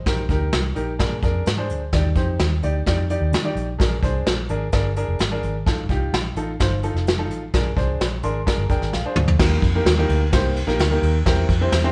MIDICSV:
0, 0, Header, 1, 4, 480
1, 0, Start_track
1, 0, Key_signature, -3, "major"
1, 0, Tempo, 466563
1, 68, Time_signature, 4, 2, 24, 8
1, 12262, End_track
2, 0, Start_track
2, 0, Title_t, "Grand piano"
2, 0, Program_c, 0, 0
2, 0, Note_on_c, 0, 72, 57
2, 0, Note_on_c, 0, 75, 62
2, 62, Note_on_c, 0, 63, 72
2, 66, Note_on_c, 0, 67, 64
2, 66, Note_on_c, 0, 70, 84
2, 221, Note_off_c, 0, 63, 0
2, 223, Note_off_c, 0, 67, 0
2, 223, Note_off_c, 0, 70, 0
2, 284, Note_off_c, 0, 75, 0
2, 289, Note_off_c, 0, 72, 0
2, 308, Note_on_c, 0, 63, 77
2, 311, Note_on_c, 0, 67, 71
2, 315, Note_on_c, 0, 70, 87
2, 620, Note_off_c, 0, 63, 0
2, 622, Note_off_c, 0, 67, 0
2, 624, Note_off_c, 0, 70, 0
2, 774, Note_on_c, 0, 63, 77
2, 780, Note_on_c, 0, 67, 69
2, 783, Note_on_c, 0, 70, 80
2, 937, Note_off_c, 0, 63, 0
2, 940, Note_off_c, 0, 67, 0
2, 941, Note_off_c, 0, 70, 0
2, 1017, Note_on_c, 0, 62, 79
2, 1021, Note_on_c, 0, 70, 87
2, 1023, Note_on_c, 0, 68, 72
2, 1178, Note_off_c, 0, 62, 0
2, 1180, Note_off_c, 0, 70, 0
2, 1181, Note_off_c, 0, 68, 0
2, 1267, Note_on_c, 0, 68, 66
2, 1268, Note_on_c, 0, 62, 73
2, 1274, Note_on_c, 0, 70, 85
2, 1501, Note_off_c, 0, 68, 0
2, 1502, Note_off_c, 0, 62, 0
2, 1505, Note_off_c, 0, 70, 0
2, 1625, Note_on_c, 0, 68, 68
2, 1626, Note_on_c, 0, 62, 76
2, 1628, Note_on_c, 0, 72, 84
2, 1860, Note_off_c, 0, 62, 0
2, 1860, Note_off_c, 0, 68, 0
2, 1861, Note_off_c, 0, 72, 0
2, 1986, Note_on_c, 0, 63, 75
2, 1989, Note_on_c, 0, 67, 65
2, 1990, Note_on_c, 0, 74, 81
2, 2142, Note_off_c, 0, 63, 0
2, 2144, Note_off_c, 0, 67, 0
2, 2144, Note_off_c, 0, 74, 0
2, 2221, Note_on_c, 0, 63, 79
2, 2225, Note_on_c, 0, 67, 70
2, 2226, Note_on_c, 0, 72, 82
2, 2536, Note_off_c, 0, 63, 0
2, 2538, Note_off_c, 0, 67, 0
2, 2538, Note_off_c, 0, 72, 0
2, 2703, Note_on_c, 0, 63, 73
2, 2709, Note_on_c, 0, 67, 69
2, 2711, Note_on_c, 0, 74, 84
2, 2861, Note_off_c, 0, 63, 0
2, 2864, Note_off_c, 0, 67, 0
2, 2864, Note_off_c, 0, 74, 0
2, 2952, Note_on_c, 0, 67, 72
2, 2954, Note_on_c, 0, 63, 78
2, 2955, Note_on_c, 0, 74, 87
2, 3105, Note_off_c, 0, 67, 0
2, 3106, Note_off_c, 0, 63, 0
2, 3107, Note_off_c, 0, 74, 0
2, 3190, Note_on_c, 0, 63, 77
2, 3192, Note_on_c, 0, 67, 75
2, 3195, Note_on_c, 0, 74, 87
2, 3422, Note_off_c, 0, 63, 0
2, 3423, Note_off_c, 0, 67, 0
2, 3425, Note_off_c, 0, 74, 0
2, 3542, Note_on_c, 0, 63, 78
2, 3546, Note_on_c, 0, 67, 72
2, 3547, Note_on_c, 0, 74, 86
2, 3778, Note_off_c, 0, 63, 0
2, 3780, Note_off_c, 0, 67, 0
2, 3780, Note_off_c, 0, 74, 0
2, 3894, Note_on_c, 0, 68, 69
2, 3895, Note_on_c, 0, 62, 75
2, 3900, Note_on_c, 0, 70, 82
2, 4056, Note_off_c, 0, 62, 0
2, 4056, Note_off_c, 0, 68, 0
2, 4059, Note_off_c, 0, 70, 0
2, 4145, Note_on_c, 0, 62, 74
2, 4147, Note_on_c, 0, 68, 73
2, 4147, Note_on_c, 0, 72, 91
2, 4458, Note_off_c, 0, 62, 0
2, 4459, Note_off_c, 0, 68, 0
2, 4459, Note_off_c, 0, 72, 0
2, 4626, Note_on_c, 0, 62, 80
2, 4631, Note_on_c, 0, 68, 72
2, 4633, Note_on_c, 0, 70, 81
2, 4782, Note_off_c, 0, 62, 0
2, 4784, Note_off_c, 0, 68, 0
2, 4785, Note_off_c, 0, 70, 0
2, 4868, Note_on_c, 0, 62, 81
2, 4868, Note_on_c, 0, 68, 73
2, 4871, Note_on_c, 0, 70, 89
2, 5023, Note_off_c, 0, 62, 0
2, 5023, Note_off_c, 0, 68, 0
2, 5024, Note_off_c, 0, 70, 0
2, 5112, Note_on_c, 0, 62, 74
2, 5112, Note_on_c, 0, 70, 87
2, 5114, Note_on_c, 0, 68, 70
2, 5343, Note_off_c, 0, 62, 0
2, 5343, Note_off_c, 0, 70, 0
2, 5344, Note_off_c, 0, 68, 0
2, 5468, Note_on_c, 0, 62, 76
2, 5468, Note_on_c, 0, 68, 73
2, 5472, Note_on_c, 0, 70, 87
2, 5701, Note_off_c, 0, 62, 0
2, 5701, Note_off_c, 0, 68, 0
2, 5703, Note_off_c, 0, 70, 0
2, 5826, Note_on_c, 0, 69, 89
2, 5829, Note_on_c, 0, 63, 75
2, 5831, Note_on_c, 0, 65, 70
2, 5982, Note_off_c, 0, 69, 0
2, 5984, Note_off_c, 0, 63, 0
2, 5984, Note_off_c, 0, 65, 0
2, 6067, Note_on_c, 0, 63, 78
2, 6072, Note_on_c, 0, 65, 68
2, 6073, Note_on_c, 0, 67, 89
2, 6379, Note_off_c, 0, 63, 0
2, 6381, Note_off_c, 0, 65, 0
2, 6382, Note_off_c, 0, 67, 0
2, 6550, Note_on_c, 0, 65, 72
2, 6553, Note_on_c, 0, 63, 77
2, 6555, Note_on_c, 0, 69, 89
2, 6704, Note_off_c, 0, 65, 0
2, 6705, Note_off_c, 0, 63, 0
2, 6706, Note_off_c, 0, 69, 0
2, 6786, Note_on_c, 0, 63, 79
2, 6793, Note_on_c, 0, 65, 74
2, 6795, Note_on_c, 0, 72, 87
2, 6942, Note_off_c, 0, 63, 0
2, 6945, Note_off_c, 0, 65, 0
2, 6947, Note_off_c, 0, 72, 0
2, 7027, Note_on_c, 0, 63, 76
2, 7030, Note_on_c, 0, 65, 73
2, 7034, Note_on_c, 0, 69, 85
2, 7261, Note_off_c, 0, 63, 0
2, 7262, Note_off_c, 0, 65, 0
2, 7264, Note_off_c, 0, 69, 0
2, 7392, Note_on_c, 0, 63, 78
2, 7394, Note_on_c, 0, 69, 89
2, 7395, Note_on_c, 0, 65, 72
2, 7623, Note_off_c, 0, 63, 0
2, 7624, Note_off_c, 0, 69, 0
2, 7625, Note_off_c, 0, 65, 0
2, 7757, Note_on_c, 0, 62, 74
2, 7759, Note_on_c, 0, 68, 72
2, 7760, Note_on_c, 0, 70, 88
2, 7908, Note_off_c, 0, 62, 0
2, 7909, Note_off_c, 0, 68, 0
2, 7909, Note_off_c, 0, 70, 0
2, 7988, Note_on_c, 0, 62, 80
2, 7992, Note_on_c, 0, 68, 70
2, 7992, Note_on_c, 0, 72, 83
2, 8300, Note_off_c, 0, 62, 0
2, 8302, Note_off_c, 0, 68, 0
2, 8302, Note_off_c, 0, 72, 0
2, 8472, Note_on_c, 0, 84, 64
2, 8473, Note_on_c, 0, 62, 79
2, 8475, Note_on_c, 0, 68, 70
2, 8475, Note_on_c, 0, 70, 85
2, 8626, Note_off_c, 0, 62, 0
2, 8627, Note_off_c, 0, 68, 0
2, 8627, Note_off_c, 0, 70, 0
2, 8693, Note_off_c, 0, 84, 0
2, 8708, Note_on_c, 0, 68, 71
2, 8709, Note_on_c, 0, 62, 78
2, 8710, Note_on_c, 0, 82, 73
2, 8715, Note_on_c, 0, 70, 89
2, 8864, Note_off_c, 0, 62, 0
2, 8864, Note_off_c, 0, 68, 0
2, 8867, Note_off_c, 0, 70, 0
2, 8932, Note_off_c, 0, 82, 0
2, 8947, Note_on_c, 0, 62, 73
2, 8949, Note_on_c, 0, 68, 73
2, 8949, Note_on_c, 0, 79, 65
2, 8951, Note_on_c, 0, 70, 82
2, 9171, Note_off_c, 0, 79, 0
2, 9181, Note_off_c, 0, 62, 0
2, 9182, Note_off_c, 0, 68, 0
2, 9183, Note_off_c, 0, 70, 0
2, 9192, Note_on_c, 0, 77, 69
2, 9315, Note_on_c, 0, 62, 81
2, 9317, Note_on_c, 0, 68, 66
2, 9319, Note_on_c, 0, 72, 82
2, 9545, Note_off_c, 0, 62, 0
2, 9546, Note_off_c, 0, 68, 0
2, 9547, Note_off_c, 0, 72, 0
2, 9636, Note_off_c, 0, 77, 0
2, 9671, Note_on_c, 0, 58, 82
2, 9672, Note_on_c, 0, 67, 71
2, 9673, Note_on_c, 0, 63, 74
2, 9674, Note_on_c, 0, 70, 91
2, 9903, Note_off_c, 0, 58, 0
2, 9904, Note_off_c, 0, 63, 0
2, 9904, Note_off_c, 0, 67, 0
2, 9904, Note_off_c, 0, 70, 0
2, 10034, Note_on_c, 0, 58, 88
2, 10035, Note_on_c, 0, 63, 75
2, 10036, Note_on_c, 0, 67, 79
2, 10038, Note_on_c, 0, 70, 93
2, 10186, Note_off_c, 0, 58, 0
2, 10187, Note_off_c, 0, 63, 0
2, 10187, Note_off_c, 0, 67, 0
2, 10188, Note_off_c, 0, 70, 0
2, 10269, Note_on_c, 0, 63, 87
2, 10270, Note_on_c, 0, 58, 90
2, 10271, Note_on_c, 0, 67, 84
2, 10276, Note_on_c, 0, 70, 98
2, 10502, Note_off_c, 0, 58, 0
2, 10502, Note_off_c, 0, 63, 0
2, 10503, Note_off_c, 0, 67, 0
2, 10505, Note_off_c, 0, 70, 0
2, 10622, Note_on_c, 0, 58, 89
2, 10624, Note_on_c, 0, 72, 97
2, 10625, Note_on_c, 0, 63, 79
2, 10625, Note_on_c, 0, 67, 81
2, 10858, Note_off_c, 0, 58, 0
2, 10859, Note_off_c, 0, 72, 0
2, 10860, Note_off_c, 0, 63, 0
2, 10860, Note_off_c, 0, 67, 0
2, 10976, Note_on_c, 0, 58, 86
2, 10978, Note_on_c, 0, 63, 79
2, 10978, Note_on_c, 0, 67, 80
2, 10981, Note_on_c, 0, 70, 93
2, 11137, Note_off_c, 0, 58, 0
2, 11138, Note_off_c, 0, 63, 0
2, 11138, Note_off_c, 0, 67, 0
2, 11139, Note_off_c, 0, 70, 0
2, 11219, Note_on_c, 0, 58, 85
2, 11222, Note_on_c, 0, 63, 79
2, 11223, Note_on_c, 0, 67, 81
2, 11226, Note_on_c, 0, 70, 92
2, 11457, Note_off_c, 0, 58, 0
2, 11458, Note_off_c, 0, 63, 0
2, 11459, Note_off_c, 0, 67, 0
2, 11460, Note_off_c, 0, 70, 0
2, 11581, Note_on_c, 0, 60, 80
2, 11582, Note_on_c, 0, 64, 76
2, 11587, Note_on_c, 0, 70, 90
2, 11588, Note_on_c, 0, 67, 75
2, 11818, Note_off_c, 0, 60, 0
2, 11818, Note_off_c, 0, 64, 0
2, 11821, Note_off_c, 0, 67, 0
2, 11821, Note_off_c, 0, 70, 0
2, 11945, Note_on_c, 0, 60, 83
2, 11946, Note_on_c, 0, 64, 77
2, 11950, Note_on_c, 0, 67, 76
2, 11951, Note_on_c, 0, 72, 92
2, 12101, Note_off_c, 0, 60, 0
2, 12102, Note_off_c, 0, 64, 0
2, 12104, Note_off_c, 0, 67, 0
2, 12104, Note_off_c, 0, 72, 0
2, 12182, Note_on_c, 0, 60, 99
2, 12183, Note_on_c, 0, 67, 85
2, 12186, Note_on_c, 0, 64, 85
2, 12188, Note_on_c, 0, 72, 99
2, 12262, Note_off_c, 0, 60, 0
2, 12262, Note_off_c, 0, 64, 0
2, 12262, Note_off_c, 0, 67, 0
2, 12262, Note_off_c, 0, 72, 0
2, 12262, End_track
3, 0, Start_track
3, 0, Title_t, "Fingered electric bass"
3, 0, Program_c, 1, 33
3, 60, Note_on_c, 1, 34, 97
3, 271, Note_off_c, 1, 34, 0
3, 299, Note_on_c, 1, 38, 80
3, 510, Note_off_c, 1, 38, 0
3, 543, Note_on_c, 1, 36, 77
3, 752, Note_off_c, 1, 36, 0
3, 791, Note_on_c, 1, 34, 73
3, 996, Note_off_c, 1, 34, 0
3, 1027, Note_on_c, 1, 46, 91
3, 1234, Note_off_c, 1, 46, 0
3, 1260, Note_on_c, 1, 41, 83
3, 1470, Note_off_c, 1, 41, 0
3, 1510, Note_on_c, 1, 44, 85
3, 1750, Note_off_c, 1, 44, 0
3, 1750, Note_on_c, 1, 38, 80
3, 1955, Note_off_c, 1, 38, 0
3, 1982, Note_on_c, 1, 39, 96
3, 2191, Note_off_c, 1, 39, 0
3, 2220, Note_on_c, 1, 41, 83
3, 2430, Note_off_c, 1, 41, 0
3, 2463, Note_on_c, 1, 39, 89
3, 2672, Note_off_c, 1, 39, 0
3, 2707, Note_on_c, 1, 38, 78
3, 2914, Note_off_c, 1, 38, 0
3, 2944, Note_on_c, 1, 41, 83
3, 3256, Note_off_c, 1, 41, 0
3, 3298, Note_on_c, 1, 39, 83
3, 3417, Note_on_c, 1, 51, 86
3, 3432, Note_off_c, 1, 39, 0
3, 3628, Note_off_c, 1, 51, 0
3, 3656, Note_on_c, 1, 34, 87
3, 3867, Note_off_c, 1, 34, 0
3, 3911, Note_on_c, 1, 34, 94
3, 4116, Note_off_c, 1, 34, 0
3, 4143, Note_on_c, 1, 36, 89
3, 4351, Note_off_c, 1, 36, 0
3, 4392, Note_on_c, 1, 34, 84
3, 4596, Note_off_c, 1, 34, 0
3, 4626, Note_on_c, 1, 32, 78
3, 4833, Note_off_c, 1, 32, 0
3, 4867, Note_on_c, 1, 31, 94
3, 5177, Note_off_c, 1, 31, 0
3, 5228, Note_on_c, 1, 29, 77
3, 5331, Note_off_c, 1, 29, 0
3, 5345, Note_on_c, 1, 32, 81
3, 5553, Note_off_c, 1, 32, 0
3, 5592, Note_on_c, 1, 32, 82
3, 5796, Note_off_c, 1, 32, 0
3, 5833, Note_on_c, 1, 33, 94
3, 6037, Note_off_c, 1, 33, 0
3, 6060, Note_on_c, 1, 36, 79
3, 6270, Note_off_c, 1, 36, 0
3, 6304, Note_on_c, 1, 34, 79
3, 6512, Note_off_c, 1, 34, 0
3, 6536, Note_on_c, 1, 33, 75
3, 6747, Note_off_c, 1, 33, 0
3, 6794, Note_on_c, 1, 31, 87
3, 7101, Note_off_c, 1, 31, 0
3, 7142, Note_on_c, 1, 29, 75
3, 7506, Note_off_c, 1, 29, 0
3, 7506, Note_on_c, 1, 33, 84
3, 7713, Note_off_c, 1, 33, 0
3, 7754, Note_on_c, 1, 34, 100
3, 7958, Note_off_c, 1, 34, 0
3, 7988, Note_on_c, 1, 36, 94
3, 8194, Note_off_c, 1, 36, 0
3, 8238, Note_on_c, 1, 34, 84
3, 8440, Note_off_c, 1, 34, 0
3, 8473, Note_on_c, 1, 32, 86
3, 8677, Note_off_c, 1, 32, 0
3, 8825, Note_on_c, 1, 31, 82
3, 8929, Note_off_c, 1, 31, 0
3, 8948, Note_on_c, 1, 29, 74
3, 9051, Note_off_c, 1, 29, 0
3, 9065, Note_on_c, 1, 32, 78
3, 9169, Note_off_c, 1, 32, 0
3, 9192, Note_on_c, 1, 34, 92
3, 9293, Note_off_c, 1, 34, 0
3, 9426, Note_on_c, 1, 38, 87
3, 9634, Note_off_c, 1, 38, 0
3, 9666, Note_on_c, 1, 39, 109
3, 9873, Note_off_c, 1, 39, 0
3, 9900, Note_on_c, 1, 41, 91
3, 10110, Note_off_c, 1, 41, 0
3, 10136, Note_on_c, 1, 39, 93
3, 10348, Note_off_c, 1, 39, 0
3, 10383, Note_on_c, 1, 38, 93
3, 10591, Note_off_c, 1, 38, 0
3, 10629, Note_on_c, 1, 36, 88
3, 10938, Note_off_c, 1, 36, 0
3, 10982, Note_on_c, 1, 34, 86
3, 11087, Note_off_c, 1, 34, 0
3, 11102, Note_on_c, 1, 38, 91
3, 11311, Note_off_c, 1, 38, 0
3, 11341, Note_on_c, 1, 39, 93
3, 11550, Note_off_c, 1, 39, 0
3, 11585, Note_on_c, 1, 40, 107
3, 11792, Note_off_c, 1, 40, 0
3, 11821, Note_on_c, 1, 41, 94
3, 12030, Note_off_c, 1, 41, 0
3, 12059, Note_on_c, 1, 40, 105
3, 12262, Note_off_c, 1, 40, 0
3, 12262, End_track
4, 0, Start_track
4, 0, Title_t, "Drums"
4, 63, Note_on_c, 9, 36, 98
4, 63, Note_on_c, 9, 42, 77
4, 67, Note_on_c, 9, 38, 89
4, 166, Note_off_c, 9, 36, 0
4, 166, Note_off_c, 9, 42, 0
4, 170, Note_off_c, 9, 38, 0
4, 298, Note_on_c, 9, 36, 78
4, 303, Note_on_c, 9, 42, 65
4, 401, Note_off_c, 9, 36, 0
4, 406, Note_off_c, 9, 42, 0
4, 540, Note_on_c, 9, 42, 73
4, 542, Note_on_c, 9, 38, 110
4, 643, Note_off_c, 9, 42, 0
4, 645, Note_off_c, 9, 38, 0
4, 779, Note_on_c, 9, 42, 66
4, 882, Note_off_c, 9, 42, 0
4, 1022, Note_on_c, 9, 42, 74
4, 1024, Note_on_c, 9, 36, 85
4, 1027, Note_on_c, 9, 38, 100
4, 1125, Note_off_c, 9, 42, 0
4, 1127, Note_off_c, 9, 36, 0
4, 1130, Note_off_c, 9, 38, 0
4, 1261, Note_on_c, 9, 36, 89
4, 1261, Note_on_c, 9, 42, 67
4, 1364, Note_off_c, 9, 36, 0
4, 1364, Note_off_c, 9, 42, 0
4, 1501, Note_on_c, 9, 42, 75
4, 1515, Note_on_c, 9, 38, 103
4, 1604, Note_off_c, 9, 42, 0
4, 1617, Note_off_c, 9, 38, 0
4, 1744, Note_on_c, 9, 42, 59
4, 1847, Note_off_c, 9, 42, 0
4, 1981, Note_on_c, 9, 42, 75
4, 1984, Note_on_c, 9, 36, 101
4, 1985, Note_on_c, 9, 38, 92
4, 2084, Note_off_c, 9, 42, 0
4, 2087, Note_off_c, 9, 36, 0
4, 2088, Note_off_c, 9, 38, 0
4, 2217, Note_on_c, 9, 42, 69
4, 2218, Note_on_c, 9, 36, 80
4, 2320, Note_off_c, 9, 42, 0
4, 2321, Note_off_c, 9, 36, 0
4, 2462, Note_on_c, 9, 42, 83
4, 2465, Note_on_c, 9, 38, 110
4, 2565, Note_off_c, 9, 42, 0
4, 2568, Note_off_c, 9, 38, 0
4, 2706, Note_on_c, 9, 42, 68
4, 2809, Note_off_c, 9, 42, 0
4, 2947, Note_on_c, 9, 42, 74
4, 2948, Note_on_c, 9, 36, 79
4, 2952, Note_on_c, 9, 38, 99
4, 3050, Note_off_c, 9, 42, 0
4, 3051, Note_off_c, 9, 36, 0
4, 3055, Note_off_c, 9, 38, 0
4, 3189, Note_on_c, 9, 42, 67
4, 3291, Note_off_c, 9, 42, 0
4, 3424, Note_on_c, 9, 42, 75
4, 3438, Note_on_c, 9, 38, 104
4, 3527, Note_off_c, 9, 42, 0
4, 3541, Note_off_c, 9, 38, 0
4, 3667, Note_on_c, 9, 42, 60
4, 3770, Note_off_c, 9, 42, 0
4, 3908, Note_on_c, 9, 36, 103
4, 3914, Note_on_c, 9, 42, 78
4, 3917, Note_on_c, 9, 38, 95
4, 4011, Note_off_c, 9, 36, 0
4, 4017, Note_off_c, 9, 42, 0
4, 4020, Note_off_c, 9, 38, 0
4, 4142, Note_on_c, 9, 36, 81
4, 4147, Note_on_c, 9, 42, 71
4, 4245, Note_off_c, 9, 36, 0
4, 4250, Note_off_c, 9, 42, 0
4, 4387, Note_on_c, 9, 42, 79
4, 4389, Note_on_c, 9, 38, 114
4, 4490, Note_off_c, 9, 42, 0
4, 4492, Note_off_c, 9, 38, 0
4, 4619, Note_on_c, 9, 42, 68
4, 4722, Note_off_c, 9, 42, 0
4, 4860, Note_on_c, 9, 42, 75
4, 4865, Note_on_c, 9, 38, 95
4, 4867, Note_on_c, 9, 36, 83
4, 4963, Note_off_c, 9, 42, 0
4, 4968, Note_off_c, 9, 38, 0
4, 4970, Note_off_c, 9, 36, 0
4, 5104, Note_on_c, 9, 42, 66
4, 5207, Note_off_c, 9, 42, 0
4, 5340, Note_on_c, 9, 42, 77
4, 5354, Note_on_c, 9, 38, 99
4, 5443, Note_off_c, 9, 42, 0
4, 5457, Note_off_c, 9, 38, 0
4, 5587, Note_on_c, 9, 42, 58
4, 5689, Note_off_c, 9, 42, 0
4, 5829, Note_on_c, 9, 36, 105
4, 5832, Note_on_c, 9, 42, 75
4, 5835, Note_on_c, 9, 38, 91
4, 5932, Note_off_c, 9, 36, 0
4, 5934, Note_off_c, 9, 42, 0
4, 5938, Note_off_c, 9, 38, 0
4, 6062, Note_on_c, 9, 36, 83
4, 6063, Note_on_c, 9, 42, 70
4, 6165, Note_off_c, 9, 36, 0
4, 6165, Note_off_c, 9, 42, 0
4, 6313, Note_on_c, 9, 42, 78
4, 6315, Note_on_c, 9, 38, 110
4, 6415, Note_off_c, 9, 42, 0
4, 6418, Note_off_c, 9, 38, 0
4, 6545, Note_on_c, 9, 42, 70
4, 6648, Note_off_c, 9, 42, 0
4, 6789, Note_on_c, 9, 42, 83
4, 6792, Note_on_c, 9, 36, 82
4, 6794, Note_on_c, 9, 38, 100
4, 6892, Note_off_c, 9, 42, 0
4, 6895, Note_off_c, 9, 36, 0
4, 6897, Note_off_c, 9, 38, 0
4, 7027, Note_on_c, 9, 42, 67
4, 7130, Note_off_c, 9, 42, 0
4, 7163, Note_on_c, 9, 38, 30
4, 7266, Note_off_c, 9, 38, 0
4, 7274, Note_on_c, 9, 42, 73
4, 7287, Note_on_c, 9, 38, 105
4, 7376, Note_off_c, 9, 42, 0
4, 7390, Note_off_c, 9, 38, 0
4, 7517, Note_on_c, 9, 42, 65
4, 7620, Note_off_c, 9, 42, 0
4, 7753, Note_on_c, 9, 42, 79
4, 7755, Note_on_c, 9, 36, 108
4, 7757, Note_on_c, 9, 38, 90
4, 7856, Note_off_c, 9, 42, 0
4, 7858, Note_off_c, 9, 36, 0
4, 7860, Note_off_c, 9, 38, 0
4, 7990, Note_on_c, 9, 36, 84
4, 7999, Note_on_c, 9, 42, 63
4, 8093, Note_off_c, 9, 36, 0
4, 8102, Note_off_c, 9, 42, 0
4, 8238, Note_on_c, 9, 42, 84
4, 8240, Note_on_c, 9, 38, 117
4, 8341, Note_off_c, 9, 42, 0
4, 8343, Note_off_c, 9, 38, 0
4, 8468, Note_on_c, 9, 42, 68
4, 8571, Note_off_c, 9, 42, 0
4, 8714, Note_on_c, 9, 36, 83
4, 8714, Note_on_c, 9, 42, 79
4, 8719, Note_on_c, 9, 38, 99
4, 8817, Note_off_c, 9, 36, 0
4, 8817, Note_off_c, 9, 42, 0
4, 8822, Note_off_c, 9, 38, 0
4, 8947, Note_on_c, 9, 36, 84
4, 8947, Note_on_c, 9, 42, 70
4, 9050, Note_off_c, 9, 36, 0
4, 9050, Note_off_c, 9, 42, 0
4, 9073, Note_on_c, 9, 38, 30
4, 9176, Note_off_c, 9, 38, 0
4, 9189, Note_on_c, 9, 38, 52
4, 9292, Note_off_c, 9, 38, 0
4, 9422, Note_on_c, 9, 45, 81
4, 9525, Note_off_c, 9, 45, 0
4, 9545, Note_on_c, 9, 43, 79
4, 9648, Note_off_c, 9, 43, 0
4, 9661, Note_on_c, 9, 49, 101
4, 9665, Note_on_c, 9, 38, 96
4, 9666, Note_on_c, 9, 36, 118
4, 9764, Note_off_c, 9, 49, 0
4, 9768, Note_off_c, 9, 38, 0
4, 9769, Note_off_c, 9, 36, 0
4, 9901, Note_on_c, 9, 36, 95
4, 9905, Note_on_c, 9, 51, 61
4, 10004, Note_off_c, 9, 36, 0
4, 10008, Note_off_c, 9, 51, 0
4, 10145, Note_on_c, 9, 51, 67
4, 10147, Note_on_c, 9, 38, 122
4, 10247, Note_off_c, 9, 51, 0
4, 10250, Note_off_c, 9, 38, 0
4, 10383, Note_on_c, 9, 51, 60
4, 10486, Note_off_c, 9, 51, 0
4, 10622, Note_on_c, 9, 51, 73
4, 10627, Note_on_c, 9, 36, 96
4, 10627, Note_on_c, 9, 38, 107
4, 10725, Note_off_c, 9, 51, 0
4, 10730, Note_off_c, 9, 36, 0
4, 10730, Note_off_c, 9, 38, 0
4, 10868, Note_on_c, 9, 51, 58
4, 10971, Note_off_c, 9, 51, 0
4, 10993, Note_on_c, 9, 38, 33
4, 11096, Note_off_c, 9, 38, 0
4, 11102, Note_on_c, 9, 51, 69
4, 11115, Note_on_c, 9, 38, 115
4, 11204, Note_off_c, 9, 51, 0
4, 11218, Note_off_c, 9, 38, 0
4, 11347, Note_on_c, 9, 51, 55
4, 11450, Note_off_c, 9, 51, 0
4, 11584, Note_on_c, 9, 51, 69
4, 11586, Note_on_c, 9, 36, 117
4, 11588, Note_on_c, 9, 38, 95
4, 11687, Note_off_c, 9, 51, 0
4, 11689, Note_off_c, 9, 36, 0
4, 11691, Note_off_c, 9, 38, 0
4, 11820, Note_on_c, 9, 36, 89
4, 11821, Note_on_c, 9, 51, 62
4, 11923, Note_off_c, 9, 36, 0
4, 11924, Note_off_c, 9, 51, 0
4, 12060, Note_on_c, 9, 51, 72
4, 12062, Note_on_c, 9, 38, 119
4, 12162, Note_off_c, 9, 51, 0
4, 12165, Note_off_c, 9, 38, 0
4, 12262, End_track
0, 0, End_of_file